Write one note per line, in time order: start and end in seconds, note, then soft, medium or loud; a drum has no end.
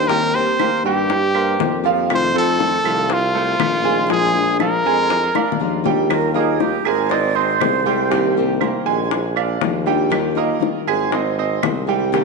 0.00 0.51 D#2 medium
0.08 0.33 D#3 medium
0.08 0.51 G3 medium
0.08 0.33 A#3 medium
0.08 0.33 C4 medium
0.08 0.51 G4 medium
0.08 0.33 G4 medium
0.08 0.36 A#4 loud
0.08 0.51 G5 medium
0.08 high bongo medium
0.35 0.59 A#3 medium
0.35 0.59 C4 medium
0.35 0.58 G4 medium
0.35 0.84 C5 loud
0.35 high bongo soft
0.60 1.07 D#3 soft
0.60 0.80 A#3 medium
0.60 1.08 A#3 soft
0.60 1.09 C4 medium
0.60 1.09 G4 soft
0.60 0.80 A#4 medium
0.60 0.81 C5 medium
0.60 high bongo medium
0.60 claves medium
0.84 1.55 G2 loud
0.84 1.26 G3 medium
0.84 1.26 G4 medium
0.84 1.81 G4 medium
0.84 1.26 G5 medium
0.84 high bongo soft
1.09 muted nylon-string guitar stroke medium
1.09 high bongo medium
1.35 1.76 A#3 medium
1.35 1.76 A#4 medium
1.35 1.76 C5 medium
1.35 claves medium
1.59 2.78 F2 medium
1.59 1.83 D#3 medium
1.59 1.83 A#3 medium
1.59 1.83 C4 soft
1.59 1.82 G4 medium
1.59 high bongo medium
1.59 low bongo medium
1.84 2.26 F3 medium
1.84 2.09 A#3 medium
1.84 2.08 C4 medium
1.84 2.26 F4 medium
1.84 2.08 G4 medium
1.84 2.26 F5 medium
1.84 high bongo soft
2.09 2.33 C3 medium
2.09 2.34 D#3 medium
2.09 2.34 A3 medium
2.09 2.33 C4 medium
2.09 2.33 F4 medium
2.09 high bongo medium
2.09 claves medium
2.14 2.35 C5 loud
2.34 2.57 D#3 medium
2.34 2.58 A3 medium
2.34 2.76 A3 medium
2.34 2.58 C4 medium
2.34 2.58 F4 medium
2.34 2.76 A4 medium
2.34 3.14 A4 loud
2.34 2.77 C5 medium
2.58 3.08 D#3 soft
2.58 3.08 A3 medium
2.58 3.08 C4 medium
2.58 3.08 F4 soft
2.58 high bongo medium
2.84 3.56 C2 loud
2.84 3.26 F3 medium
2.84 3.26 F4 medium
2.84 3.26 F5 medium
2.84 claves medium
3.08 muted nylon-string guitar stroke medium
3.08 high bongo medium
3.12 4.11 F4 loud
3.35 3.76 A3 medium
3.35 3.76 A4 medium
3.35 3.76 C5 medium
3.59 4.78 A#1 loud
3.59 3.83 D#3 medium
3.59 3.83 A3 medium
3.59 3.82 C4 medium
3.59 3.81 F4 medium
3.59 high bongo medium
3.59 low bongo medium
3.59 claves medium
3.83 4.08 D#3 medium
3.83 4.05 G#3 medium
3.83 4.08 A3 medium
3.83 4.08 C4 medium
3.83 4.08 F4 medium
3.83 4.05 G#4 medium
3.83 4.05 G#5 medium
4.08 4.33 F3 medium
4.08 4.33 G#3 medium
4.08 4.51 G#3 medium
4.08 4.33 D4 medium
4.08 4.33 F4 medium
4.08 4.51 G#4 medium
4.08 4.57 G#4 loud
4.08 4.51 G#5 medium
4.08 high bongo medium
4.34 4.59 G#3 medium
4.34 4.59 D4 medium
4.34 4.59 F4 medium
4.34 high bongo soft
4.59 5.09 F3 medium
4.59 5.09 G#3 soft
4.59 5.09 D4 soft
4.59 4.81 D4 medium
4.59 5.10 F4 medium
4.59 5.81 A#4 loud
4.59 4.81 D5 medium
4.59 4.81 F5 medium
4.59 high bongo medium
4.59 claves medium
4.85 5.30 F2 medium
4.85 5.27 G#3 medium
4.85 5.27 G#4 medium
4.85 5.27 G#5 medium
4.85 high bongo soft
5.10 muted nylon-string guitar stroke medium
5.10 high bongo medium
5.35 5.77 D4 medium
5.35 5.77 D5 medium
5.35 5.77 F5 medium
5.35 high bongo medium
5.35 claves medium
5.52 low bongo medium
5.59 6.79 D#2 medium
5.59 5.84 F3 soft
5.59 5.84 G#3 medium
5.59 5.84 D4 medium
5.59 5.83 F4 medium
5.84 6.06 G3 medium
5.84 6.10 G#3 medium
5.84 6.09 D4 medium
5.84 6.09 F4 medium
5.84 6.06 G4 medium
5.84 6.06 G5 medium
5.84 low bongo medium
6.09 6.34 D#3 medium
6.09 6.35 G3 medium
6.09 6.34 D#4 medium
6.09 6.33 F4 medium
6.09 6.34 A#4 medium
6.09 high bongo medium
6.09 claves medium
6.34 6.59 G3 medium
6.34 6.77 A#3 medium
6.34 6.59 D#4 medium
6.34 6.59 F4 medium
6.34 6.62 G#4 medium
6.34 6.77 A#4 medium
6.34 6.77 D#5 medium
6.59 7.08 D#3 medium
6.59 7.09 G3 medium
6.59 7.09 D#4 soft
6.59 7.09 F4 medium
6.59 6.87 G4 medium
6.59 high bongo medium
6.85 7.57 G#1 loud
6.85 7.07 G#3 medium
6.85 7.07 G#4 medium
6.85 7.12 A#4 medium
6.85 7.07 G#5 medium
6.85 claves medium
7.09 7.32 C4 medium
7.09 7.31 C5 medium
7.09 7.37 D5 loud
7.09 7.32 D#5 medium
7.09 muted nylon-string guitar stroke medium
7.09 high bongo medium
7.35 7.77 C4 medium
7.35 8.36 C5 loud
7.35 7.77 C5 medium
7.35 7.77 D#5 medium
7.60 8.80 C2 loud
7.60 7.85 D#3 medium
7.60 7.85 G#3 medium
7.60 7.85 C4 medium
7.60 7.85 G#4 medium
7.60 high bongo medium
7.60 low bongo medium
7.60 claves medium
7.86 8.07 G3 medium
7.86 8.11 G#3 medium
7.86 8.11 C4 medium
7.86 8.07 G4 medium
7.86 8.10 G#4 medium
7.86 8.07 G5 medium
8.10 8.35 C3 medium
8.10 8.36 D#3 medium
8.10 8.52 G3 medium
8.10 8.36 A#3 medium
8.10 8.36 C4 medium
8.10 8.52 G4 medium
8.10 8.36 G4 medium
8.10 8.53 G5 medium
8.10 high bongo medium
8.37 8.60 D#3 medium
8.37 8.61 A#3 medium
8.37 8.61 C4 medium
8.37 8.61 G4 medium
8.37 high bongo soft
8.60 9.11 D#3 soft
8.60 8.81 A#3 medium
8.60 9.11 A#3 soft
8.60 9.11 C4 medium
8.60 9.11 G4 medium
8.60 8.82 A#4 medium
8.60 8.82 C5 medium
8.60 high bongo medium
8.60 claves medium
8.86 9.58 A#1 loud
8.86 9.27 G#3 medium
8.86 9.28 G#5 medium
8.86 high bongo soft
9.11 muted nylon-string guitar stroke medium
9.11 high bongo medium
9.36 9.78 D4 medium
9.36 9.78 D5 medium
9.36 9.78 F5 medium
9.36 claves medium
9.61 10.54 D#2 loud
9.61 9.86 F3 medium
9.61 9.86 G#3 medium
9.61 9.86 D4 medium
9.61 9.85 F4 soft
9.61 high bongo medium
9.61 low bongo medium
9.86 10.28 G3 medium
9.86 10.11 G#3 medium
9.86 10.11 D4 medium
9.86 10.11 F4 medium
9.86 10.28 G4 medium
9.86 10.29 G5 medium
9.86 high bongo soft
10.10 10.35 D#3 medium
10.10 10.35 G3 medium
10.10 10.35 D#4 medium
10.10 10.34 F4 medium
10.10 high bongo medium
10.10 claves medium
10.35 10.59 G3 medium
10.35 10.78 A#3 medium
10.35 10.60 D#4 medium
10.35 10.60 F4 medium
10.35 10.79 A#4 medium
10.35 10.79 D#5 medium
10.59 11.10 D#3 medium
10.59 11.11 G3 medium
10.59 11.11 D#4 medium
10.59 11.11 F4 medium
10.59 high bongo medium
10.87 11.59 G#1 loud
10.87 11.08 G#3 medium
10.87 11.08 G#4 loud
10.87 11.09 G#5 medium
10.87 claves medium
11.11 11.34 C4 medium
11.11 11.33 C5 medium
11.11 11.34 D#5 medium
11.11 muted nylon-string guitar stroke medium
11.11 high bongo medium
11.38 11.80 C4 medium
11.38 11.80 C5 medium
11.38 11.80 D#5 medium
11.62 12.24 C2 loud
11.62 11.87 D#3 soft
11.62 11.87 G#3 soft
11.62 11.87 C4 medium
11.62 11.86 G#4 medium
11.62 high bongo medium
11.62 low bongo medium
11.62 claves medium
11.87 12.09 G3 medium
11.87 12.13 G#3 medium
11.87 12.12 C4 medium
11.87 12.09 G4 medium
11.87 12.12 G#4 medium
11.87 12.10 G5 medium
12.12 12.24 C3 medium
12.12 12.24 D#3 medium
12.12 12.24 G3 medium
12.12 12.24 A#3 medium
12.12 12.24 C4 medium
12.12 12.24 G4 medium
12.12 12.24 G5 medium
12.12 high bongo medium